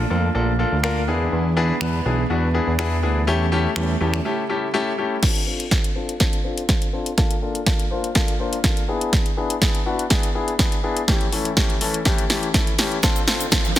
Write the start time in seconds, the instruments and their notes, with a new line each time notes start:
Already playing: string machine A3 A#3 D4
0.10 analog synth bass F2, grand piano A#3 D4 F4 A4
0.35 analog synth bass A#1, grand piano A#3 D4 F4 A4
0.59 grand piano A#3 D4 F4 A4
0.72 analog synth bass D2
0.83 grand piano A#3 D4 F4 A#4, finger snap
1.08 analog synth bass E2, string machine E3 B3 G#4, grand piano B3 D4 E4 G#4
1.32 analog synth bass E2
1.57 grand piano B3 D4 E4 G#4
1.81 analog synth bass E2, grand piano B3 D4 E4 B4, finger snap
2.05 analog synth bass B1, grand piano B3 D4 E4 G#4
2.30 analog synth bass E2, grand piano B3 D4 E4 F#4
2.54 grand piano B3 D4 E4 G#4
2.67 analog synth bass E2
2.79 grand piano B3 D4 E4 G#4, finger snap
3.03 analog synth bass D2, grand piano B3 D4 E4 G#4
3.27 analog synth bass E2, grand piano A3 C#4 E4 G4, string machine A3 C#4 G4
3.52 grand piano A3 C#4 E4 G4
3.76 analog synth bass E2, grand piano E4 G4, finger snap
4.00 analog synth bass E2, grand piano A3 C#4 E4 G4
4.14 finger snap
4.25 grand piano A3 C#4 E4 G4
4.49 grand piano A3 C#4 E4 G4
4.74 grand piano A3 C#4 E4 G4
4.98 grand piano A3 C#4 E4 G4
5.22 grand piano C4 D4 F4, kick, snare, closed hi-hat, crash
5.35 closed hi-hat
5.47 grand piano C4 D4 F4 A4
5.60 closed hi-hat
5.71 grand piano C4 D4 F4 A4, kick, snare, closed hi-hat
5.84 closed hi-hat
5.96 grand piano C4 D4 F4 A4
6.09 closed hi-hat
6.20 grand piano C4 D4 F4 A4, kick, snare, closed hi-hat
6.33 closed hi-hat
6.44 grand piano C4 D4 F4 A4
6.58 closed hi-hat
6.69 grand piano C4 D4 F4 A4, kick, snare, closed hi-hat
6.82 closed hi-hat
6.93 grand piano C4 D4 F4 A4
7.06 closed hi-hat
7.17 grand piano A#3 D4 F4 A4, kick, snare, closed hi-hat
7.31 closed hi-hat
7.42 grand piano A#3 D4 F4 A4
7.55 closed hi-hat
7.66 grand piano A#3 D4 F4 A4, kick, snare, closed hi-hat
7.79 closed hi-hat
7.91 grand piano A#3 D4 F4 C5
8.04 closed hi-hat
8.15 grand piano A#3 D4 F4 A4, kick, snare, closed hi-hat
8.28 closed hi-hat
8.40 grand piano A#3 D4 F4 C5
8.53 closed hi-hat
8.64 grand piano A#3 D4 F4 A4, kick, snare, closed hi-hat
8.77 closed hi-hat
8.88 grand piano B3 D4 E4 G#4
9.01 closed hi-hat
9.13 kick, snare, closed hi-hat
9.26 closed hi-hat
9.37 grand piano B3 D4 E4 G#4
9.50 closed hi-hat
9.61 grand piano B3 D4 E4 G#4, kick, snare, closed hi-hat
9.75 closed hi-hat
9.86 grand piano B3 D4 E4 F#4
9.99 closed hi-hat
10.10 grand piano B3 D4 E4 G#4, kick, snare, closed hi-hat
10.23 closed hi-hat
10.35 grand piano B3 D4 E4 G#4
10.48 closed hi-hat
10.59 grand piano B3 D4 E4 G#4, kick, snare, closed hi-hat
10.72 closed hi-hat
10.83 grand piano B3 D4 E4 G#4
10.97 closed hi-hat
11.08 grand piano E3 A3 C#4 E4 G4, kick, snare, closed hi-hat
11.21 closed hi-hat
11.32 grand piano E3 A3 C#4 E4 A4, open hi-hat
11.45 closed hi-hat
11.57 grand piano E3 A3 C#4 E4 G4, kick, snare, closed hi-hat
11.70 closed hi-hat
11.81 grand piano E3 A3 C#4 E4 A4, open hi-hat
11.94 closed hi-hat
12.05 grand piano E3 A3 C#4 E4 G4, kick, snare, closed hi-hat
12.18 closed hi-hat
12.30 grand piano E3 A3 C#4 E4 G4, snare, open hi-hat
12.43 closed hi-hat
12.54 grand piano E3 A3 C#4 E4 A4, kick, snare, closed hi-hat
12.67 closed hi-hat
12.79 grand piano E3 A3 C#4 E4 G4, snare, open hi-hat
12.92 closed hi-hat
13.03 grand piano C4 D4 F4 A4, kick, snare, closed hi-hat, riser, shaker
13.16 closed hi-hat, shaker
13.27 grand piano C4 D4 F4 A4, snare, open hi-hat, shaker
13.41 closed hi-hat, shaker
13.52 grand piano C4 D4 F4 A4, kick, snare, closed hi-hat, shaker
13.65 closed hi-hat, shaker
13.76 grand piano C4, open hi-hat, shaker